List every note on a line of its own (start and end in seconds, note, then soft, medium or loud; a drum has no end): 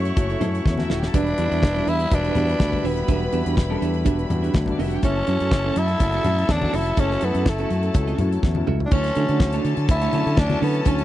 0.00 0.10 F#2 medium
0.00 1.10 C#3 medium
0.00 1.10 F#3 medium
0.00 0.16 A3 medium
0.00 1.10 A3 medium
0.00 0.16 C#4 medium
0.00 0.17 E4 medium
0.00 4.99 E4 medium
0.00 0.17 F#4 medium
0.00 0.42 A4 medium
0.00 0.74 C#5 loud
0.00 0.74 C#6 medium
0.05 closed hi-hat soft
0.16 0.35 F#1 loud
0.16 0.32 A3 medium
0.16 0.33 C#4 medium
0.16 0.33 E4 medium
0.16 0.33 F#4 medium
0.16 muted clean electric guitar stroke soft
0.16 kick loud
0.16 closed hi-hat medium
0.16 muted conga soft
0.30 0.39 E4 soft
0.30 0.40 A4 soft
0.30 0.40 C#5 soft
0.30 0.39 E5 medium
0.30 closed hi-hat soft
0.40 0.59 F#2 medium
0.40 0.64 A3 medium
0.40 0.64 C#4 medium
0.40 0.61 E4 medium
0.40 0.65 E4 medium
0.40 0.54 A4 medium
0.40 0.65 A4 medium
0.40 0.53 C#5 medium
0.40 0.53 E5 loud
0.40 closed hi-hat medium
0.40 muted conga soft
0.40 low conga medium
0.54 muted clean electric guitar stroke soft
0.54 closed hi-hat soft
0.65 0.83 E2 medium
0.65 kick medium
0.65 snare medium
0.65 high conga medium
0.78 1.01 A3 medium
0.78 1.02 C#4 medium
0.78 1.02 E4 medium
0.78 1.02 F#4 loud
0.78 muted clean electric guitar stroke soft
0.78 snare medium
0.78 high conga medium
0.82 0.90 E4 medium
0.82 0.90 E5 medium
0.90 1.08 D#1 medium
0.90 1.04 E4 medium
0.90 0.98 F#4 medium
0.90 1.03 A4 medium
0.90 1.03 C#5 loud
0.90 1.03 E5 medium
0.90 0.98 F#5 medium
0.90 snare medium
0.98 1.06 G4 medium
0.98 1.06 G5 medium
1.03 muted clean electric guitar stroke soft
1.03 snare medium
1.07 1.15 A4 medium
1.07 1.15 A5 medium
1.13 1.32 E1 medium
1.13 4.99 D3 medium
1.13 1.30 G3 medium
1.13 4.99 G3 medium
1.13 1.30 B3 medium
1.13 3.07 B3 medium
1.13 1.28 D4 medium
1.13 1.30 D4 medium
1.13 1.90 D4 medium
1.13 1.30 F#4 medium
1.13 1.28 G4 medium
1.13 4.63 B4 medium
1.13 1.28 B4 medium
1.13 1.28 E5 medium
1.13 4.63 B5 medium
1.13 kick loud
1.13 closed hi-hat medium
1.13 muted conga medium
1.27 closed hi-hat soft
1.38 1.48 E2 medium
1.38 1.62 G3 medium
1.38 1.62 B3 medium
1.38 1.49 D4 medium
1.38 1.62 D4 medium
1.38 1.62 E4 medium
1.38 1.50 G4 medium
1.38 1.50 B4 medium
1.38 1.50 E5 medium
1.38 closed hi-hat medium
1.51 1.60 E2 medium
1.51 1.62 D4 medium
1.51 1.61 G4 medium
1.51 1.61 B4 medium
1.51 1.61 F#5 medium
1.51 closed hi-hat soft
1.63 1.81 E1 medium
1.63 kick loud
1.63 snare loud
1.63 high conga medium
1.75 1.98 G3 medium
1.75 1.99 B3 medium
1.75 1.99 D4 medium
1.75 1.86 D4 medium
1.75 1.99 E4 medium
1.75 1.86 G4 medium
1.75 1.87 B4 medium
1.75 1.87 E5 medium
1.75 closed hi-hat soft
1.87 2.05 E2 medium
1.87 1.98 D4 medium
1.87 2.16 E4 loud
1.87 1.98 G4 medium
1.87 1.98 B4 medium
1.87 1.99 E5 medium
1.87 closed hi-hat medium
1.87 muted conga soft
2.00 closed hi-hat soft
2.10 2.29 E1 medium
2.10 2.27 G3 medium
2.10 2.27 B3 medium
2.10 2.27 D4 medium
2.10 2.28 F#4 medium
2.10 muted clean electric guitar stroke soft
2.10 kick loud
2.10 closed hi-hat medium
2.10 muted conga soft
2.14 2.88 D4 loud
2.25 2.35 D4 medium
2.25 2.35 G4 medium
2.25 2.36 B4 medium
2.25 2.36 E5 medium
2.25 closed hi-hat soft
2.35 2.54 E2 medium
2.35 2.59 G3 medium
2.35 2.59 B3 medium
2.35 2.59 D4 medium
2.35 2.47 D4 medium
2.35 2.60 F#4 medium
2.35 2.47 G4 medium
2.35 2.47 B4 medium
2.35 2.47 E5 medium
2.35 closed hi-hat medium
2.35 muted conga soft
2.35 low conga medium
2.49 closed hi-hat soft
2.59 2.78 D2 medium
2.59 kick loud
2.59 snare loud
2.59 high conga medium
2.72 2.96 G3 medium
2.72 2.96 B3 medium
2.72 2.97 D4 medium
2.72 2.97 F#4 medium
2.72 muted clean electric guitar stroke soft
2.72 kick medium
2.72 high conga medium
2.84 3.02 D#1 medium
2.84 3.10 B3 medium
2.84 2.98 D4 medium
2.84 2.96 G4 medium
2.84 2.96 B4 medium
2.84 2.95 E5 medium
2.84 open hi-hat medium
2.96 muted clean electric guitar stroke soft
2.96 closed hi-hat soft
3.08 3.26 E1 medium
3.08 3.24 G3 medium
3.08 3.25 B3 medium
3.08 3.55 B3 medium
3.08 5.01 C#4 medium
3.08 3.22 D4 medium
3.08 3.25 D4 medium
3.08 3.25 F#4 medium
3.08 3.22 G4 medium
3.08 3.22 B4 medium
3.08 3.23 E5 medium
3.08 kick loud
3.08 closed hi-hat medium
3.08 muted conga soft
3.32 3.42 E2 medium
3.32 3.56 G3 medium
3.32 3.56 B3 medium
3.32 3.44 D4 medium
3.32 3.56 D4 medium
3.32 3.57 F#4 medium
3.32 3.44 G4 medium
3.32 3.44 B4 medium
3.32 3.44 E5 medium
3.32 closed hi-hat medium
3.45 3.55 E2 medium
3.45 3.56 D4 medium
3.45 3.56 G4 medium
3.45 3.55 B4 medium
3.45 3.55 F#5 medium
3.45 closed hi-hat soft
3.57 3.75 E1 loud
3.57 kick loud
3.57 snare loud
3.57 high conga medium
3.69 3.93 G3 medium
3.69 3.93 B3 medium
3.69 3.94 D4 medium
3.69 3.79 D4 medium
3.69 3.80 G4 medium
3.69 3.94 A4 loud
3.69 3.80 B4 medium
3.69 3.81 E5 medium
3.81 4.07 E2 medium
3.81 3.92 D4 medium
3.81 3.92 G4 medium
3.81 3.93 B4 medium
3.81 3.92 E5 medium
3.81 closed hi-hat medium
3.81 muted conga soft
3.94 closed hi-hat soft
4.05 4.24 E1 medium
4.05 4.22 G3 medium
4.05 4.22 B3 medium
4.05 4.19 D4 medium
4.05 4.22 D4 medium
4.05 4.22 F#4 medium
4.05 4.18 G4 medium
4.05 4.18 B4 medium
4.05 4.17 E5 medium
4.05 kick loud
4.05 closed hi-hat medium
4.05 muted conga soft
4.18 muted clean electric guitar stroke soft
4.18 closed hi-hat soft
4.29 4.48 E2 medium
4.29 4.53 G3 medium
4.29 4.53 B3 medium
4.29 4.54 D4 medium
4.29 4.54 F#4 medium
4.29 muted clean electric guitar stroke soft
4.29 closed hi-hat medium
4.29 muted conga soft
4.29 low conga medium
4.42 4.53 D4 soft
4.42 4.53 G4 soft
4.42 4.53 B4 medium
4.42 4.52 E5 medium
4.42 closed hi-hat soft
4.54 4.72 D2 medium
4.54 kick loud
4.54 snare loud
4.54 high conga medium
4.66 4.90 G3 medium
4.66 4.91 B3 medium
4.66 4.91 D4 medium
4.66 4.91 F#4 medium
4.66 muted clean electric guitar stroke soft
4.66 kick medium
4.66 closed hi-hat soft
4.66 high conga medium
4.71 4.79 D4 medium
4.71 4.79 D5 medium
4.79 4.97 F1 medium
4.79 4.99 D4 medium
4.79 4.87 E4 medium
4.79 4.92 G4 medium
4.79 4.91 B4 medium
4.79 4.87 E5 medium
4.79 4.90 E5 loud
4.79 open hi-hat medium
4.87 4.95 F#4 medium
4.87 4.95 F#5 medium
4.91 5.03 G4 medium
4.91 5.03 G5 medium
4.91 muted clean electric guitar stroke soft
4.91 closed hi-hat soft
5.02 5.21 F#1 loud
5.02 8.75 C#3 medium
5.02 5.19 F#3 medium
5.02 8.75 F#3 medium
5.02 8.75 A3 medium
5.02 5.19 A3 medium
5.02 5.17 C#4 medium
5.02 5.20 C#4 medium
5.02 5.79 C#4 loud
5.02 8.75 E4 medium
5.02 5.20 E4 medium
5.02 5.17 F#4 medium
5.02 8.64 A4 medium
5.02 5.17 A4 medium
5.02 5.18 E5 medium
5.02 8.64 A5 loud
5.02 kick loud
5.02 closed hi-hat medium
5.02 muted conga medium
5.26 5.37 F#2 medium
5.26 5.50 F#3 medium
5.26 5.51 A3 medium
5.26 5.51 C#4 medium
5.26 5.38 C#4 medium
5.26 5.51 E4 medium
5.26 5.39 F#4 medium
5.26 5.39 A4 medium
5.26 5.39 E5 medium
5.26 closed hi-hat medium
5.40 5.49 F#2 medium
5.40 5.51 C#4 medium
5.40 5.51 F#4 medium
5.40 5.50 A4 medium
5.40 5.50 F#5 medium
5.40 closed hi-hat soft
5.51 5.69 F#1 medium
5.51 muted clean electric guitar stroke soft
5.51 kick loud
5.51 snare loud
5.51 high conga medium
5.64 5.88 F#3 medium
5.64 5.88 A3 medium
5.64 5.88 C#4 medium
5.64 5.75 C#4 medium
5.64 5.88 E4 medium
5.64 5.76 F#4 medium
5.64 5.76 A4 medium
5.64 5.77 E5 medium
5.76 5.94 F#2 medium
5.76 5.87 C#4 medium
5.76 6.53 E4 loud
5.76 5.87 F#4 medium
5.76 5.88 A4 medium
5.76 5.88 E5 medium
5.76 closed hi-hat medium
5.76 muted conga soft
5.88 muted clean electric guitar stroke soft
5.88 closed hi-hat soft
5.99 6.18 F#1 medium
5.99 6.16 F#3 medium
5.99 6.16 A3 medium
5.99 6.17 C#4 medium
5.99 6.17 E4 medium
5.99 muted clean electric guitar stroke soft
5.99 kick loud
5.99 closed hi-hat medium
5.99 muted conga soft
6.13 6.24 C#4 medium
6.13 6.24 F#4 medium
6.13 6.24 A4 medium
6.13 6.25 E5 medium
6.13 closed hi-hat soft
6.24 6.43 F#2 medium
6.24 6.48 F#3 medium
6.24 6.48 A3 medium
6.24 6.36 C#4 medium
6.24 6.48 C#4 medium
6.24 6.49 E4 medium
6.24 6.36 F#4 medium
6.24 6.36 A4 medium
6.24 6.36 E5 medium
6.24 closed hi-hat medium
6.24 muted conga medium
6.24 low conga medium
6.38 closed hi-hat soft
6.49 6.67 E2 loud
6.49 6.77 D4 loud
6.49 kick loud
6.49 snare loud
6.49 high conga medium
6.61 6.85 F#3 medium
6.61 6.85 A3 medium
6.61 6.85 C#4 medium
6.61 6.86 F#4 medium
6.61 muted clean electric guitar stroke soft
6.61 kick medium
6.61 high conga medium
6.73 6.92 F1 loud
6.73 6.87 C#4 medium
6.73 7.01 E4 medium
6.73 6.85 F#4 medium
6.73 6.85 A4 medium
6.73 6.85 E5 loud
6.73 open hi-hat medium
6.86 closed hi-hat soft
6.97 7.15 F#1 loud
6.97 7.14 F#3 medium
6.97 7.14 A3 medium
6.97 7.11 C#4 medium
6.97 7.14 C#4 medium
6.97 7.26 C#4 medium
6.97 7.14 E4 medium
6.97 7.11 F#4 medium
6.97 7.12 A4 medium
6.97 7.12 E5 medium
6.97 kick loud
6.97 closed hi-hat medium
6.97 muted conga soft
7.11 snare soft
7.21 7.32 F#2 medium
7.21 7.45 F#3 medium
7.21 7.46 A3 medium
7.21 7.50 B3 medium
7.21 7.32 C#4 medium
7.21 7.46 C#4 medium
7.21 7.46 E4 medium
7.21 7.33 F#4 medium
7.21 7.33 A4 medium
7.21 7.33 E5 medium
7.21 closed hi-hat medium
7.35 7.43 F#2 medium
7.35 7.45 C#4 medium
7.35 7.45 F#4 medium
7.35 7.45 A4 medium
7.35 7.45 F#5 medium
7.35 closed hi-hat soft
7.46 7.64 F#1 loud
7.46 8.44 A3 medium
7.46 kick loud
7.46 snare loud
7.46 high conga medium
7.58 7.82 F#3 medium
7.58 7.82 A3 medium
7.58 7.83 C#4 medium
7.58 7.70 C#4 medium
7.58 7.83 E4 medium
7.58 7.70 F#4 medium
7.58 7.71 A4 medium
7.58 7.71 E5 medium
7.58 closed hi-hat soft
7.70 7.89 F#2 medium
7.70 7.82 C#4 medium
7.70 7.82 F#4 medium
7.70 7.82 A4 medium
7.70 7.82 E5 medium
7.70 closed hi-hat medium
7.70 muted conga soft
7.83 muted clean electric guitar stroke medium
7.83 closed hi-hat soft
7.94 8.13 C#2 medium
7.94 8.11 F#3 medium
7.94 8.11 A3 medium
7.94 8.11 C#4 medium
7.94 8.11 E4 medium
7.94 muted clean electric guitar stroke soft
7.94 kick loud
7.94 closed hi-hat medium
7.94 muted conga soft
8.07 8.18 C#4 medium
8.07 8.18 F#4 medium
8.07 8.18 A4 medium
8.07 8.18 E5 medium
8.07 closed hi-hat soft
8.19 8.37 F#2 medium
8.19 8.42 F#3 medium
8.19 8.43 A3 medium
8.19 8.43 C#4 medium
8.19 8.43 E4 medium
8.19 muted clean electric guitar stroke soft
8.19 closed hi-hat medium
8.19 muted conga medium
8.19 low conga medium
8.31 muted clean electric guitar stroke soft
8.31 closed hi-hat soft
8.43 8.61 E2 medium
8.43 kick loud
8.43 snare medium
8.43 high conga medium
8.55 8.79 F#3 medium
8.55 8.80 A3 medium
8.55 8.80 C#4 medium
8.55 8.80 E4 medium
8.55 muted clean electric guitar stroke soft
8.55 high tom medium
8.55 high conga medium
8.67 8.86 C#2 medium
8.67 8.81 C#4 loud
8.67 8.79 F#4 medium
8.67 8.79 A4 loud
8.67 8.79 E5 loud
8.67 mid tom medium
8.80 floor tom medium
8.86 8.94 D4 medium
8.91 9.10 D2 medium
8.91 10.84 D3 medium
8.91 9.08 F#3 medium
8.91 11.04 F#3 medium
8.91 9.06 A3 medium
8.91 9.08 A3 medium
8.91 11.04 A3 medium
8.91 9.65 C#4 loud
8.91 11.04 C#4 medium
8.91 9.08 C#4 medium
8.91 9.06 D4 loud
8.91 9.09 E4 medium
8.91 9.06 F#4 medium
8.91 11.04 A4 medium
8.91 9.06 C#5 loud
8.91 11.04 A5 loud
8.91 kick loud
8.91 crash medium
8.91 muted conga medium
9.04 snare soft
9.04 closed hi-hat soft
9.15 9.26 D3 loud
9.15 9.24 F#3 medium
9.15 9.24 A3 medium
9.15 9.27 A3 medium
9.15 9.24 C#4 medium
9.15 9.27 D4 medium
9.15 9.25 E4 medium
9.15 9.27 F#4 medium
9.15 9.28 C#5 medium
9.15 closed hi-hat medium
9.28 9.38 D3 loud
9.28 9.83 F#3 medium
9.28 9.83 A3 medium
9.28 9.39 A3 medium
9.28 9.83 C#4 medium
9.28 9.39 D4 medium
9.28 9.35 E4 medium
9.28 9.39 F#4 medium
9.28 9.39 D5 medium
9.28 closed hi-hat soft
9.36 9.86 F#4 medium
9.40 9.58 D2 loud
9.40 muted clean electric guitar stroke soft
9.40 kick loud
9.40 snare loud
9.40 high conga medium
9.53 9.63 A3 medium
9.53 9.64 D4 medium
9.53 9.65 F#4 medium
9.53 9.65 C#5 medium
9.53 closed hi-hat medium
9.64 9.74 D3 loud
9.64 9.75 A3 medium
9.64 9.76 D4 medium
9.64 9.76 F#4 medium
9.64 9.76 C#5 medium
9.64 closed hi-hat medium
9.77 9.86 D3 loud
9.77 muted clean electric guitar stroke medium
9.77 closed hi-hat soft
9.89 10.07 D2 loud
9.89 10.41 E4 loud
9.89 muted clean electric guitar stroke soft
9.89 kick loud
9.89 closed hi-hat medium
9.89 muted conga medium
10.01 10.12 A3 medium
10.01 10.12 D4 medium
10.01 10.13 F#4 medium
10.01 10.13 C#5 medium
10.01 closed hi-hat medium
10.12 10.23 D3 medium
10.12 10.36 F#3 medium
10.12 10.36 A3 medium
10.12 10.24 A3 medium
10.12 10.37 C#4 medium
10.12 10.24 D4 medium
10.12 10.37 E4 medium
10.12 10.25 F#4 medium
10.12 10.25 C#5 medium
10.12 closed hi-hat medium
10.12 muted conga medium
10.26 10.35 D3 medium
10.26 muted clean electric guitar stroke medium
10.26 closed hi-hat soft
10.37 10.55 D2 medium
10.37 10.63 D4 loud
10.37 kick loud
10.37 snare loud
10.37 high conga medium
10.50 10.73 F#3 medium
10.50 10.73 A3 medium
10.50 10.74 C#4 medium
10.50 10.74 E4 medium
10.50 closed hi-hat soft
10.50 high conga loud
10.62 10.80 D3 loud
10.62 10.75 A3 medium
10.62 10.90 B3 medium
10.62 10.75 D4 medium
10.62 10.74 F#4 medium
10.62 10.74 C#5 medium
10.62 open hi-hat medium
10.75 muted clean electric guitar stroke soft
10.75 closed hi-hat soft
10.85 11.04 D2 loud
10.85 11.02 F#3 medium
10.85 11.02 A3 medium
10.85 11.00 A3 medium
10.85 11.02 C#4 medium
10.85 11.04 C#4 loud
10.85 11.00 D4 medium
10.85 11.04 E4 medium
10.85 11.02 E4 medium
10.85 11.01 F#4 medium
10.85 11.01 C#5 loud
10.85 kick loud
10.85 closed hi-hat medium
10.85 muted conga medium
10.99 closed hi-hat soft